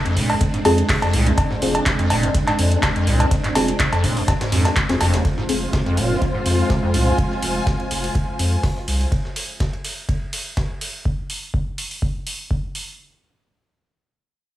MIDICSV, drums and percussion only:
0, 0, Header, 1, 2, 480
1, 0, Start_track
1, 0, Tempo, 483871
1, 1367, Time_signature, 4, 2, 24, 8
1, 14450, End_track
2, 0, Start_track
2, 0, Title_t, "Drums"
2, 54, Note_on_c, 9, 51, 42
2, 56, Note_on_c, 9, 42, 38
2, 154, Note_off_c, 9, 51, 0
2, 155, Note_off_c, 9, 42, 0
2, 165, Note_on_c, 9, 36, 62
2, 165, Note_on_c, 9, 51, 75
2, 167, Note_on_c, 9, 46, 103
2, 264, Note_off_c, 9, 51, 0
2, 265, Note_off_c, 9, 36, 0
2, 266, Note_off_c, 9, 46, 0
2, 293, Note_on_c, 9, 51, 48
2, 295, Note_on_c, 9, 46, 59
2, 295, Note_on_c, 9, 56, 63
2, 392, Note_off_c, 9, 51, 0
2, 394, Note_off_c, 9, 46, 0
2, 394, Note_off_c, 9, 56, 0
2, 404, Note_on_c, 9, 51, 89
2, 406, Note_on_c, 9, 36, 118
2, 406, Note_on_c, 9, 42, 68
2, 503, Note_off_c, 9, 51, 0
2, 505, Note_off_c, 9, 36, 0
2, 506, Note_off_c, 9, 42, 0
2, 534, Note_on_c, 9, 42, 37
2, 633, Note_off_c, 9, 42, 0
2, 645, Note_on_c, 9, 51, 71
2, 646, Note_on_c, 9, 46, 103
2, 646, Note_on_c, 9, 56, 69
2, 744, Note_off_c, 9, 51, 0
2, 745, Note_off_c, 9, 46, 0
2, 745, Note_off_c, 9, 56, 0
2, 774, Note_on_c, 9, 42, 53
2, 774, Note_on_c, 9, 51, 41
2, 873, Note_off_c, 9, 51, 0
2, 874, Note_off_c, 9, 42, 0
2, 884, Note_on_c, 9, 38, 117
2, 884, Note_on_c, 9, 46, 81
2, 886, Note_on_c, 9, 36, 116
2, 886, Note_on_c, 9, 39, 116
2, 886, Note_on_c, 9, 42, 65
2, 984, Note_off_c, 9, 38, 0
2, 984, Note_off_c, 9, 46, 0
2, 985, Note_off_c, 9, 36, 0
2, 985, Note_off_c, 9, 39, 0
2, 985, Note_off_c, 9, 42, 0
2, 1014, Note_on_c, 9, 38, 39
2, 1015, Note_on_c, 9, 42, 41
2, 1015, Note_on_c, 9, 56, 67
2, 1113, Note_off_c, 9, 38, 0
2, 1114, Note_off_c, 9, 42, 0
2, 1114, Note_off_c, 9, 56, 0
2, 1125, Note_on_c, 9, 46, 104
2, 1125, Note_on_c, 9, 51, 74
2, 1225, Note_off_c, 9, 46, 0
2, 1225, Note_off_c, 9, 51, 0
2, 1254, Note_on_c, 9, 42, 54
2, 1254, Note_on_c, 9, 51, 44
2, 1353, Note_off_c, 9, 42, 0
2, 1353, Note_off_c, 9, 51, 0
2, 1365, Note_on_c, 9, 42, 69
2, 1365, Note_on_c, 9, 56, 61
2, 1366, Note_on_c, 9, 36, 127
2, 1366, Note_on_c, 9, 51, 90
2, 1464, Note_off_c, 9, 42, 0
2, 1464, Note_off_c, 9, 56, 0
2, 1465, Note_off_c, 9, 36, 0
2, 1465, Note_off_c, 9, 51, 0
2, 1495, Note_on_c, 9, 38, 48
2, 1594, Note_off_c, 9, 38, 0
2, 1606, Note_on_c, 9, 46, 104
2, 1606, Note_on_c, 9, 51, 72
2, 1706, Note_off_c, 9, 46, 0
2, 1706, Note_off_c, 9, 51, 0
2, 1735, Note_on_c, 9, 42, 54
2, 1735, Note_on_c, 9, 56, 62
2, 1834, Note_off_c, 9, 42, 0
2, 1834, Note_off_c, 9, 56, 0
2, 1845, Note_on_c, 9, 38, 125
2, 1845, Note_on_c, 9, 51, 91
2, 1846, Note_on_c, 9, 36, 110
2, 1846, Note_on_c, 9, 39, 113
2, 1846, Note_on_c, 9, 42, 69
2, 1945, Note_off_c, 9, 36, 0
2, 1945, Note_off_c, 9, 38, 0
2, 1945, Note_off_c, 9, 39, 0
2, 1945, Note_off_c, 9, 42, 0
2, 1945, Note_off_c, 9, 51, 0
2, 1975, Note_on_c, 9, 42, 40
2, 1975, Note_on_c, 9, 51, 42
2, 2074, Note_off_c, 9, 42, 0
2, 2074, Note_off_c, 9, 51, 0
2, 2085, Note_on_c, 9, 46, 106
2, 2085, Note_on_c, 9, 56, 61
2, 2086, Note_on_c, 9, 51, 69
2, 2185, Note_off_c, 9, 46, 0
2, 2185, Note_off_c, 9, 51, 0
2, 2185, Note_off_c, 9, 56, 0
2, 2215, Note_on_c, 9, 42, 56
2, 2314, Note_off_c, 9, 42, 0
2, 2326, Note_on_c, 9, 36, 110
2, 2326, Note_on_c, 9, 51, 85
2, 2327, Note_on_c, 9, 42, 67
2, 2425, Note_off_c, 9, 36, 0
2, 2425, Note_off_c, 9, 51, 0
2, 2426, Note_off_c, 9, 42, 0
2, 2455, Note_on_c, 9, 39, 36
2, 2455, Note_on_c, 9, 42, 39
2, 2455, Note_on_c, 9, 56, 67
2, 2554, Note_off_c, 9, 39, 0
2, 2554, Note_off_c, 9, 42, 0
2, 2554, Note_off_c, 9, 56, 0
2, 2566, Note_on_c, 9, 46, 107
2, 2566, Note_on_c, 9, 51, 70
2, 2665, Note_off_c, 9, 46, 0
2, 2665, Note_off_c, 9, 51, 0
2, 2694, Note_on_c, 9, 42, 54
2, 2794, Note_off_c, 9, 42, 0
2, 2806, Note_on_c, 9, 36, 118
2, 2806, Note_on_c, 9, 38, 116
2, 2806, Note_on_c, 9, 39, 116
2, 2806, Note_on_c, 9, 42, 68
2, 2806, Note_on_c, 9, 51, 81
2, 2806, Note_on_c, 9, 56, 59
2, 2905, Note_off_c, 9, 36, 0
2, 2905, Note_off_c, 9, 42, 0
2, 2905, Note_off_c, 9, 56, 0
2, 2906, Note_off_c, 9, 38, 0
2, 2906, Note_off_c, 9, 39, 0
2, 2906, Note_off_c, 9, 51, 0
2, 2936, Note_on_c, 9, 42, 40
2, 3035, Note_off_c, 9, 42, 0
2, 3046, Note_on_c, 9, 46, 99
2, 3046, Note_on_c, 9, 51, 71
2, 3145, Note_off_c, 9, 46, 0
2, 3146, Note_off_c, 9, 51, 0
2, 3175, Note_on_c, 9, 42, 57
2, 3175, Note_on_c, 9, 56, 62
2, 3274, Note_off_c, 9, 42, 0
2, 3274, Note_off_c, 9, 56, 0
2, 3286, Note_on_c, 9, 36, 126
2, 3286, Note_on_c, 9, 42, 70
2, 3286, Note_on_c, 9, 51, 91
2, 3385, Note_off_c, 9, 36, 0
2, 3385, Note_off_c, 9, 42, 0
2, 3385, Note_off_c, 9, 51, 0
2, 3415, Note_on_c, 9, 38, 45
2, 3415, Note_on_c, 9, 39, 37
2, 3415, Note_on_c, 9, 42, 39
2, 3514, Note_off_c, 9, 38, 0
2, 3514, Note_off_c, 9, 39, 0
2, 3514, Note_off_c, 9, 42, 0
2, 3525, Note_on_c, 9, 38, 105
2, 3525, Note_on_c, 9, 51, 80
2, 3526, Note_on_c, 9, 46, 110
2, 3526, Note_on_c, 9, 56, 64
2, 3624, Note_off_c, 9, 38, 0
2, 3624, Note_off_c, 9, 51, 0
2, 3625, Note_off_c, 9, 46, 0
2, 3625, Note_off_c, 9, 56, 0
2, 3654, Note_on_c, 9, 42, 54
2, 3654, Note_on_c, 9, 51, 41
2, 3753, Note_off_c, 9, 51, 0
2, 3754, Note_off_c, 9, 42, 0
2, 3765, Note_on_c, 9, 51, 66
2, 3766, Note_on_c, 9, 36, 109
2, 3766, Note_on_c, 9, 39, 120
2, 3766, Note_on_c, 9, 42, 74
2, 3864, Note_off_c, 9, 51, 0
2, 3865, Note_off_c, 9, 36, 0
2, 3865, Note_off_c, 9, 39, 0
2, 3865, Note_off_c, 9, 42, 0
2, 3894, Note_on_c, 9, 42, 41
2, 3894, Note_on_c, 9, 56, 63
2, 3993, Note_off_c, 9, 42, 0
2, 3993, Note_off_c, 9, 56, 0
2, 4005, Note_on_c, 9, 51, 70
2, 4006, Note_on_c, 9, 36, 61
2, 4006, Note_on_c, 9, 46, 102
2, 4104, Note_off_c, 9, 51, 0
2, 4105, Note_off_c, 9, 36, 0
2, 4105, Note_off_c, 9, 46, 0
2, 4135, Note_on_c, 9, 46, 60
2, 4135, Note_on_c, 9, 51, 46
2, 4234, Note_off_c, 9, 46, 0
2, 4234, Note_off_c, 9, 51, 0
2, 4246, Note_on_c, 9, 36, 115
2, 4246, Note_on_c, 9, 38, 104
2, 4246, Note_on_c, 9, 42, 70
2, 4246, Note_on_c, 9, 51, 83
2, 4246, Note_on_c, 9, 56, 60
2, 4345, Note_off_c, 9, 36, 0
2, 4345, Note_off_c, 9, 38, 0
2, 4345, Note_off_c, 9, 51, 0
2, 4346, Note_off_c, 9, 42, 0
2, 4346, Note_off_c, 9, 56, 0
2, 4375, Note_on_c, 9, 38, 110
2, 4375, Note_on_c, 9, 51, 77
2, 4376, Note_on_c, 9, 42, 40
2, 4474, Note_off_c, 9, 38, 0
2, 4474, Note_off_c, 9, 51, 0
2, 4475, Note_off_c, 9, 42, 0
2, 4486, Note_on_c, 9, 38, 108
2, 4486, Note_on_c, 9, 46, 106
2, 4486, Note_on_c, 9, 51, 78
2, 4585, Note_off_c, 9, 46, 0
2, 4586, Note_off_c, 9, 38, 0
2, 4586, Note_off_c, 9, 51, 0
2, 4615, Note_on_c, 9, 38, 101
2, 4615, Note_on_c, 9, 42, 57
2, 4615, Note_on_c, 9, 51, 78
2, 4615, Note_on_c, 9, 56, 61
2, 4714, Note_off_c, 9, 42, 0
2, 4714, Note_off_c, 9, 56, 0
2, 4715, Note_off_c, 9, 38, 0
2, 4715, Note_off_c, 9, 51, 0
2, 4726, Note_on_c, 9, 36, 123
2, 4726, Note_on_c, 9, 38, 100
2, 4726, Note_on_c, 9, 39, 123
2, 4726, Note_on_c, 9, 42, 69
2, 4726, Note_on_c, 9, 51, 78
2, 4825, Note_off_c, 9, 36, 0
2, 4825, Note_off_c, 9, 38, 0
2, 4825, Note_off_c, 9, 39, 0
2, 4825, Note_off_c, 9, 42, 0
2, 4825, Note_off_c, 9, 51, 0
2, 4854, Note_on_c, 9, 42, 40
2, 4855, Note_on_c, 9, 38, 107
2, 4855, Note_on_c, 9, 51, 83
2, 4953, Note_off_c, 9, 42, 0
2, 4954, Note_off_c, 9, 38, 0
2, 4954, Note_off_c, 9, 51, 0
2, 4966, Note_on_c, 9, 46, 106
2, 4966, Note_on_c, 9, 56, 60
2, 4967, Note_on_c, 9, 38, 114
2, 4967, Note_on_c, 9, 51, 83
2, 5065, Note_off_c, 9, 46, 0
2, 5065, Note_off_c, 9, 56, 0
2, 5066, Note_off_c, 9, 38, 0
2, 5066, Note_off_c, 9, 51, 0
2, 5095, Note_on_c, 9, 42, 57
2, 5096, Note_on_c, 9, 38, 103
2, 5096, Note_on_c, 9, 51, 82
2, 5194, Note_off_c, 9, 42, 0
2, 5195, Note_off_c, 9, 38, 0
2, 5195, Note_off_c, 9, 51, 0
2, 5206, Note_on_c, 9, 36, 123
2, 5207, Note_on_c, 9, 51, 92
2, 5305, Note_off_c, 9, 36, 0
2, 5306, Note_off_c, 9, 51, 0
2, 5336, Note_on_c, 9, 38, 44
2, 5435, Note_off_c, 9, 38, 0
2, 5445, Note_on_c, 9, 46, 108
2, 5447, Note_on_c, 9, 51, 70
2, 5545, Note_off_c, 9, 46, 0
2, 5547, Note_off_c, 9, 51, 0
2, 5686, Note_on_c, 9, 36, 110
2, 5687, Note_on_c, 9, 38, 126
2, 5687, Note_on_c, 9, 51, 90
2, 5785, Note_off_c, 9, 36, 0
2, 5786, Note_off_c, 9, 38, 0
2, 5786, Note_off_c, 9, 51, 0
2, 5816, Note_on_c, 9, 51, 42
2, 5916, Note_off_c, 9, 51, 0
2, 5925, Note_on_c, 9, 46, 101
2, 5928, Note_on_c, 9, 51, 70
2, 6024, Note_off_c, 9, 46, 0
2, 6027, Note_off_c, 9, 51, 0
2, 6166, Note_on_c, 9, 36, 113
2, 6167, Note_on_c, 9, 51, 81
2, 6265, Note_off_c, 9, 36, 0
2, 6266, Note_off_c, 9, 51, 0
2, 6405, Note_on_c, 9, 46, 109
2, 6407, Note_on_c, 9, 51, 69
2, 6504, Note_off_c, 9, 46, 0
2, 6506, Note_off_c, 9, 51, 0
2, 6646, Note_on_c, 9, 36, 114
2, 6646, Note_on_c, 9, 38, 105
2, 6646, Note_on_c, 9, 51, 81
2, 6745, Note_off_c, 9, 36, 0
2, 6745, Note_off_c, 9, 38, 0
2, 6745, Note_off_c, 9, 51, 0
2, 6884, Note_on_c, 9, 46, 101
2, 6887, Note_on_c, 9, 51, 67
2, 6984, Note_off_c, 9, 46, 0
2, 6986, Note_off_c, 9, 51, 0
2, 7126, Note_on_c, 9, 36, 121
2, 7127, Note_on_c, 9, 51, 87
2, 7225, Note_off_c, 9, 36, 0
2, 7226, Note_off_c, 9, 51, 0
2, 7256, Note_on_c, 9, 38, 44
2, 7355, Note_off_c, 9, 38, 0
2, 7366, Note_on_c, 9, 46, 112
2, 7367, Note_on_c, 9, 51, 68
2, 7465, Note_off_c, 9, 46, 0
2, 7466, Note_off_c, 9, 51, 0
2, 7606, Note_on_c, 9, 36, 116
2, 7607, Note_on_c, 9, 38, 122
2, 7607, Note_on_c, 9, 51, 88
2, 7705, Note_off_c, 9, 36, 0
2, 7706, Note_off_c, 9, 38, 0
2, 7706, Note_off_c, 9, 51, 0
2, 7736, Note_on_c, 9, 51, 41
2, 7835, Note_off_c, 9, 51, 0
2, 7846, Note_on_c, 9, 46, 108
2, 7847, Note_on_c, 9, 51, 67
2, 7945, Note_off_c, 9, 46, 0
2, 7946, Note_off_c, 9, 51, 0
2, 7975, Note_on_c, 9, 46, 65
2, 7975, Note_on_c, 9, 51, 44
2, 8074, Note_off_c, 9, 46, 0
2, 8074, Note_off_c, 9, 51, 0
2, 8086, Note_on_c, 9, 36, 118
2, 8086, Note_on_c, 9, 51, 87
2, 8185, Note_off_c, 9, 36, 0
2, 8186, Note_off_c, 9, 51, 0
2, 8326, Note_on_c, 9, 46, 109
2, 8326, Note_on_c, 9, 51, 66
2, 8425, Note_off_c, 9, 51, 0
2, 8426, Note_off_c, 9, 46, 0
2, 8455, Note_on_c, 9, 51, 41
2, 8555, Note_off_c, 9, 51, 0
2, 8566, Note_on_c, 9, 36, 118
2, 8566, Note_on_c, 9, 38, 108
2, 8566, Note_on_c, 9, 46, 77
2, 8665, Note_off_c, 9, 36, 0
2, 8665, Note_off_c, 9, 38, 0
2, 8665, Note_off_c, 9, 46, 0
2, 8696, Note_on_c, 9, 38, 36
2, 8795, Note_off_c, 9, 38, 0
2, 8807, Note_on_c, 9, 46, 102
2, 8808, Note_on_c, 9, 51, 70
2, 8907, Note_off_c, 9, 46, 0
2, 8907, Note_off_c, 9, 51, 0
2, 8935, Note_on_c, 9, 51, 42
2, 9035, Note_off_c, 9, 51, 0
2, 9046, Note_on_c, 9, 36, 127
2, 9047, Note_on_c, 9, 51, 90
2, 9145, Note_off_c, 9, 36, 0
2, 9146, Note_off_c, 9, 51, 0
2, 9177, Note_on_c, 9, 38, 44
2, 9276, Note_off_c, 9, 38, 0
2, 9286, Note_on_c, 9, 46, 113
2, 9287, Note_on_c, 9, 51, 68
2, 9386, Note_off_c, 9, 46, 0
2, 9386, Note_off_c, 9, 51, 0
2, 9526, Note_on_c, 9, 36, 124
2, 9526, Note_on_c, 9, 38, 122
2, 9526, Note_on_c, 9, 51, 88
2, 9625, Note_off_c, 9, 36, 0
2, 9625, Note_off_c, 9, 38, 0
2, 9625, Note_off_c, 9, 51, 0
2, 9656, Note_on_c, 9, 51, 42
2, 9755, Note_off_c, 9, 51, 0
2, 9765, Note_on_c, 9, 51, 68
2, 9766, Note_on_c, 9, 46, 100
2, 9865, Note_off_c, 9, 51, 0
2, 9866, Note_off_c, 9, 46, 0
2, 10006, Note_on_c, 9, 36, 119
2, 10006, Note_on_c, 9, 51, 87
2, 10106, Note_off_c, 9, 36, 0
2, 10106, Note_off_c, 9, 51, 0
2, 10246, Note_on_c, 9, 46, 114
2, 10246, Note_on_c, 9, 51, 66
2, 10345, Note_off_c, 9, 46, 0
2, 10345, Note_off_c, 9, 51, 0
2, 10486, Note_on_c, 9, 36, 118
2, 10486, Note_on_c, 9, 38, 110
2, 10486, Note_on_c, 9, 51, 85
2, 10585, Note_off_c, 9, 38, 0
2, 10585, Note_off_c, 9, 51, 0
2, 10586, Note_off_c, 9, 36, 0
2, 10726, Note_on_c, 9, 46, 105
2, 10726, Note_on_c, 9, 51, 68
2, 10825, Note_off_c, 9, 51, 0
2, 10826, Note_off_c, 9, 46, 0
2, 10967, Note_on_c, 9, 36, 127
2, 11066, Note_off_c, 9, 36, 0
2, 11207, Note_on_c, 9, 46, 107
2, 11306, Note_off_c, 9, 46, 0
2, 11446, Note_on_c, 9, 36, 120
2, 11546, Note_off_c, 9, 36, 0
2, 11687, Note_on_c, 9, 46, 105
2, 11786, Note_off_c, 9, 46, 0
2, 11816, Note_on_c, 9, 46, 61
2, 11916, Note_off_c, 9, 46, 0
2, 11927, Note_on_c, 9, 36, 114
2, 12026, Note_off_c, 9, 36, 0
2, 12168, Note_on_c, 9, 46, 109
2, 12267, Note_off_c, 9, 46, 0
2, 12407, Note_on_c, 9, 36, 113
2, 12506, Note_off_c, 9, 36, 0
2, 12648, Note_on_c, 9, 46, 99
2, 12747, Note_off_c, 9, 46, 0
2, 14450, End_track
0, 0, End_of_file